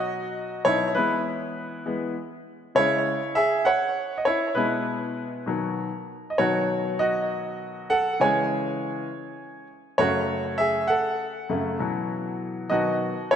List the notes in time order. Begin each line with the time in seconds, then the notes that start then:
Already playing: B2 F#3 D#4 F#4 D#5
0.65 B2 F#3 D#4 E4 C#5
0.95 E3 G#3 B3 E4 B4
1.86 E3 G#3 B3
2.75 C#3 G#3 E4 C#5
3.35 G#4 E5
3.65 C#5 F#5
4.18 D#5
4.25 E4 C#5
4.55 B2 G#3 B3 E4 B4
5.46 B2 D#3 F#3
6.30 D#5
6.38 B2 D#3 F#3 F#4 C#5
6.99 F#4 D#5
7.90 A4 F#5
8.20 C#3 E3 G#3 C#5 G#5
9.98 F#2 C#3 A3 F#4 C#5
10.58 G#4 E5
10.87 A4 F#5
11.49 F#2 C#3 A3
11.79 B2 E3 F#3
12.70 B2 D#3 F#3 F#4 D#5
13.31 E4 C#5